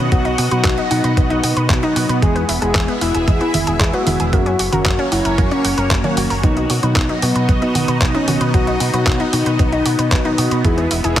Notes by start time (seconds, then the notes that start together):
Already playing: B3 F#4 D#5 F#5, downlifter
0.12 B1 B2 F#3 B3 D#4 F#4, kick, closed hi-hat
0.25 D#4, closed hi-hat
0.38 B2 F#4, open hi-hat
0.51 B2 F#3 B3 D#4 F#4 B4, closed hi-hat
0.65 B1 B3, kick, clap, closed hi-hat
0.78 D#4, closed hi-hat
0.91 B2 F#3 B3 D#4 F#4, open hi-hat
1.04 B2 B4, closed hi-hat
1.17 B1 B2 F#3 B3 D#4 F#4, kick, closed hi-hat
1.30 D#4, closed hi-hat
1.44 B2 F#4, open hi-hat
1.57 B2 B4, closed hi-hat
1.70 B1 B2 F#3 B3 D#4 F#4, kick, clap, closed hi-hat
1.83 D#4, closed hi-hat
1.96 B2 F#4, open hi-hat
2.09 B2 B4, closed hi-hat
2.22 E2 G#3 B3 E4 G#4 E5, kick, closed hi-hat
2.36 B3, closed hi-hat
2.49 E1 E4, open hi-hat
2.62 E1 G#3 B3 E4 G#4, closed hi-hat
2.75 E2 G#3, kick, clap, closed hi-hat
2.88 B3, closed hi-hat
3.01 E1 G#3 B3 E4 F#4, open hi-hat
3.15 E1 G#4, closed hi-hat
3.28 E2 G#3 B3 E4 G#4, kick, closed hi-hat
3.41 B3 E4, closed hi-hat
3.54 E1 E4, open hi-hat, high conga
3.67 E1 G#4, closed hi-hat
3.80 E2 G#3 B3 E4 G#4, kick, clap, closed hi-hat
3.93 B3 F#4, closed hi-hat
4.07 E1 E4, open hi-hat, high conga
4.20 E1 G#4, closed hi-hat
4.33 F#2 F#3 A#3 C#4 F#4 C#5, kick, closed hi-hat
4.46 C#4, closed hi-hat
4.59 F#1 F#4, open hi-hat
4.72 F#1 F#3 A#3 C#4 F#4 A#4, closed hi-hat, high conga
4.86 F#2 A#3, kick, clap, closed hi-hat
4.99 C#4, closed hi-hat
5.12 F#1 F#3 A#3 C#4 E4 F#4, open hi-hat
5.25 F#1 A#4, closed hi-hat
5.38 F#2 F#3 A#3 C#4 F#4, kick, closed hi-hat
5.51 C#4, closed hi-hat
5.65 F#1 F#4, open hi-hat
5.78 F#1 A#4, closed hi-hat
5.91 F#2 F#3 A#3 C#4 F#4, kick, clap, closed hi-hat
6.04 A#3 C#4, closed hi-hat, high conga
6.17 F#1 F#4, open hi-hat
6.30 F#1 A#4, open hi-hat
6.43 B1 B2 F#3 B3 D#4 F#4 D#5, kick, closed hi-hat
6.57 D#4, closed hi-hat
6.70 B2 F#4, open hi-hat
6.83 B2 F#3 B3 D#4 F#4 B4, closed hi-hat
6.96 B1 B3, kick, clap, closed hi-hat
7.09 D#4, closed hi-hat
7.22 B2 F#3 B3 D#4 F#4, open hi-hat
7.36 B2 B4, closed hi-hat
7.49 B1 B2 F#3 B3 D#4 F#4, kick, closed hi-hat
7.62 B3 D#4, closed hi-hat
7.75 B2 F#4, open hi-hat, high conga
7.88 B2 B4, closed hi-hat
8.01 B1 B2 F#3 B3 D#4 F#4, kick, clap, closed hi-hat
8.15 C#4 D#4, closed hi-hat
8.28 B2 F#4, open hi-hat, high conga
8.41 B2 B4, closed hi-hat
8.54 B1 B2 F#3 B3 D#4 F#4, kick, closed hi-hat
8.67 D#4, closed hi-hat
8.80 B2 F#4, open hi-hat
8.93 B2 F#3 B3 D#4 F#4 B4, closed hi-hat
9.07 B1 B3, kick, clap, closed hi-hat
9.20 D#4, closed hi-hat
9.33 B2 F#3 B3 D#4 F#4, open hi-hat
9.46 B2 B4, closed hi-hat
9.59 B1 B2 F#3 B3 D#4 F#4, kick, closed hi-hat
9.72 D#4, closed hi-hat
9.86 B2 F#4, open hi-hat
9.99 B2 B4, closed hi-hat
10.12 B1 B2 F#3 B3 D#4 F#4, kick, clap, closed hi-hat
10.25 D#4, closed hi-hat
10.38 B2 F#4, open hi-hat
10.51 B2 B4, closed hi-hat
10.65 E2 G#3 B3 E4 G#4 E5, kick, closed hi-hat
10.78 B3, closed hi-hat
10.91 E1 E4, open hi-hat
11.04 E1 G#3 B3 E4 G#4, closed hi-hat